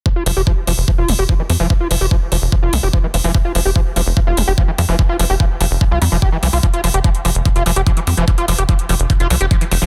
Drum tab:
HH |--o---o---o---o-|--o---o---o---oo|--o---o---o---o-|--o---o---o---oo|
BD |o---o---o---o---|o---o---o---o---|o---o---o---o---|o---o---o---o---|

HH |xxoxxxoxxxoxxxox|xxoxxxoxxxoxxxoo|
BD |o---o---o---o---|o---o---o---o---|